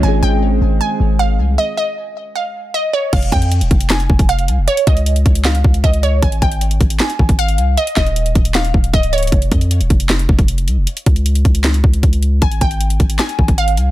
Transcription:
<<
  \new Staff \with { instrumentName = "Synth pluck" } { \time 4/4 \key f \minor \tempo 4 = 155 aes''8 g''4. aes''4 f''4 | ees''8 ees''4. f''4 ees''8 des''8 | f''8 g''4. aes''4 f''4 | des''8 ees''4. f''4 ees''8 des''8 |
aes''8 g''4. aes''4 f''4 | ees''8 ees''4. f''4 ees''8 des''8 | r1 | r1 |
aes''8 g''4. aes''4 f''4 | }
  \new Staff \with { instrumentName = "Ambient pad" } { \time 4/4 \key f \minor <aes aes' c'' ees''>1 | r1 | r1 | r1 |
r1 | r1 | r1 | r1 |
r1 | }
  \new Staff \with { instrumentName = "Synth keys" } { \time 4/4 \key f \minor <ees aes c' aes'>1 | r1 | r1 | r1 |
r1 | r1 | r1 | r1 |
r1 | }
  \new Staff \with { instrumentName = "808-style bass" } { \clef bass \time 4/4 \key f \minor aes,,8 aes,,4 aes,,8 r8 aes,,4 c,8 | r1 | f,,8 f,8. ees,,16 f,,4 f,,4 c,16 f,,16 | r8 des,4 des,4 des,8 des,4 |
aes,,8 aes,,4 aes,,8 r8 aes,,4 c,8 | r8 ees,,4 ees,,4 ees,,8 des,,4 | f,,8 f,8. ees,,16 f,,4 f,,4 c,16 f,,16 | r8 des,4 des,4 des,8 des,4 |
aes,,8 aes,,4 aes,,8 r8 aes,,4 c,8 | }
  \new DrumStaff \with { instrumentName = "Drums" } \drummode { \time 4/4 r4 r4 r4 r4 | r4 r4 r4 r4 | <cymc hh bd>16 hh16 <hh bd>16 hh16 hh16 hh16 <hh bd>16 hh16 <hc hh sn>16 hh16 bd16 <hh bd>16 hh16 hh16 hh8 | hh16 hh16 <hh bd>16 hh16 hh16 hh16 <hh bd>16 hh16 <hc hh sn>16 hh16 bd16 hh16 <hh bd>16 hh16 hh8 |
<hh bd>16 hh16 <hh bd>16 hh16 hh16 hh16 <hh bd>16 hh16 <hc hh sn>16 hh16 bd16 <hh bd>16 hh16 hh16 hh8 | hh16 hh16 <hc hh bd sn>16 hh16 hh16 hh16 <hh bd>16 hh16 <hc hh sn>16 hh16 bd16 hh16 <hh bd>16 hh16 hh32 hh32 hh32 hh32 | <hh bd>16 hh16 <hh bd>16 hh16 hh16 hh16 <hh bd>16 hh16 <hc hh sn>16 hh16 bd16 <hh bd>16 hh16 hh16 hh8 | hh16 hh16 <hh bd>16 hh16 hh16 hh16 <hh bd>16 hh16 <hc hh sn>16 hh16 bd16 hh16 <hh bd>16 hh16 hh8 |
<hh bd>16 hh16 <hh bd>16 hh16 hh16 hh16 <hh bd>16 hh16 <hc hh sn>16 hh16 bd16 <hh bd>16 hh16 hh16 hh8 | }
>>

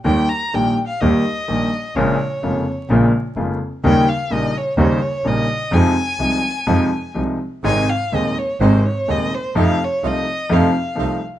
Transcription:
<<
  \new Staff \with { instrumentName = "Violin" } { \time 4/4 \key ees \mixolydian \tempo 4 = 126 g''8 bes''8 \tuplet 3/2 { g''8. r16 f''8 } ees''2 | des''2 r2 | g''8 f''8 ees''8 des''8 c''8 des''8 ees''4 | aes''2. r4 |
aes''8 f''8 ees''8 des''8 c''8 des''8 ees''8 c''8 | f''8 des''8 ees''4 f''4. r8 | }
  \new Staff \with { instrumentName = "Bandoneon" } { \time 4/4 \key ees \mixolydian r1 | r1 | r1 | r1 |
<aes c' ees'>8 r8 <aes c' ees'>8 r8 <aes c' ees'>8 r8 <aes c' ees'>8 r8 | <a ees' f'>8 r8 <a ees' f'>8 r8 <a ees' f'>8 r8 <a ees' f'>8 r8 | }
  \new Staff \with { instrumentName = "Grand piano" } { \clef bass \time 4/4 \key ees \mixolydian <ees, ees g bes g'>8 r8 <bes,, bes, ees g bes g'>8 r8 <ees, ees g bes g'>8 r8 <bes,, bes, ees g bes g'>8 r8 | <bes,, bes, des aes bes f'>8 r8 <f,, f, des aes bes f'>8 r8 <bes,, bes, des aes bes f'>8 r8 <f,, f, des aes bes f'>8 r8 | <ees, des ees g bes ees'>8 r8 <bes,, bes, des g bes ees'>8 r8 <ees, des ees g bes ees'>8 r8 <bes,, bes, des g bes ees'>8 r8 | <f, c f aes ees'>8 r8 <c, c f aes ees'>8 r8 <f, c f aes ees'>8 r8 <c, c f aes ees'>8 r8 |
<aes,, aes, c ees aes ees'>8 r8 <ees,, ees, c ees aes ees'>8 r8 <aes,, aes, c ees aes ees'>8 r8 <ees,, ees, c ees aes ees'>8 r8 | <f, c f a ees'>8 r8 <c, c f a ees'>8 r8 <f, c f a ees'>8 r8 <c, c f a ees'>8 r8 | }
  \new Staff \with { instrumentName = "Double bass" } { \clef bass \time 4/4 \key ees \mixolydian ees,8 r8 bes,,8 r8 ees,8 r8 bes,,8 r8 | bes,,8 r8 f,,8 r8 bes,,8 r8 f,,8 r8 | ees,8 r8 bes,,8 r8 ees,8 r8 bes,,8 r8 | f,8 r8 c,8 r8 f,8 r8 c,8 r8 |
aes,,8 r8 ees,8 r8 aes,,8 r8 ees,8 r8 | f,8 r8 c,8 r8 f,8 r8 c,8 r8 | }
>>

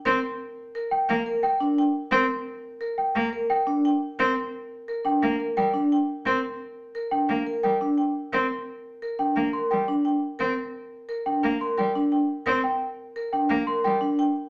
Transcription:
<<
  \new Staff \with { instrumentName = "Celesta" } { \time 6/4 \key g \minor \tempo 4 = 174 r2 r8 g''8 r4 g''8 r4. | r2 r8 g''8 r4 g''8 r4. | r2 r8 g''8 r4 g''8 r4. | r2 r8 g''8 r4 g''8 r4. |
r2 r8 g''8 r8 c'''8 g''8 r4. | r2 r8 g''8 r8 c'''8 g''8 r4. | r8 g''8 r4. g''8 r8 c'''8 g''8 r4. | }
  \new Staff \with { instrumentName = "Marimba" } { \time 6/4 \key g \minor bes'8 r4. bes'8 r4. bes'8 r8 g''8 r8 | bes'8 r4. bes'8 r4. bes'8 r8 g''8 r8 | bes'8 r4. bes'8 r4. bes'8 r8 g''8 r8 | bes'8 r4. bes'8 r4. bes'8 r8 g''8 r8 |
bes'8 r4. bes'8 r4. bes'8 r8 g''8 r8 | bes'8 r4. bes'8 r4. bes'8 r8 g''8 r8 | bes'8 r4. bes'8 r4. bes'8 r8 g''8 r8 | }
  \new Staff \with { instrumentName = "Vibraphone" } { \time 6/4 \key g \minor r2. r8 bes'8 r8 d'8 r4 | r2. r8 bes'8 r8 d'8 r4 | r2 r8 d'8 r8 bes'8 r8 d'8 r4 | r2 r8 d'8 r8 bes'8 r8 d'8 r4 |
r2 r8 d'8 r8 bes'8 r8 d'8 r4 | r2 r8 d'8 r8 bes'8 r8 d'8 r4 | r2 r8 d'8 r8 bes'8 r8 d'8 r4 | }
  \new Staff \with { instrumentName = "Cello" } { \time 6/4 \key g \minor c'8 r2 r8 bes8 r2 r8 | c'8 r2 r8 bes8 r2 r8 | c'8 r2 r8 bes8 r8 g8 r4. | c'8 r2 r8 bes8 r8 g8 r4. |
c'8 r2 r8 bes8 r8 g8 r4. | c'8 r2 r8 bes8 r8 g8 r4. | c'8 r2 r8 bes8 r8 g8 r4. | }
>>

